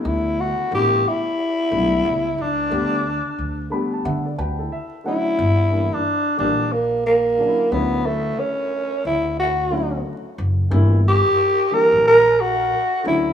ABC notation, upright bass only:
X:1
M:4/4
L:1/16
Q:"Swing 16ths" 1/4=90
K:Glyd
V:1 name="Upright bass" clef=bass
D,,3 z A,,,2 z4 B,,,2 C,,2 C,,2 | D,,3 z D,,2 z2 D,2 D,,2 z4 | G,,,3 z3 _B,,,6 z2 D,,2- | D,,2 z4 D,,6 z2 F,,,2 |
G,,,3 z4 _B,,,4- B,,, z2 D,,2 |]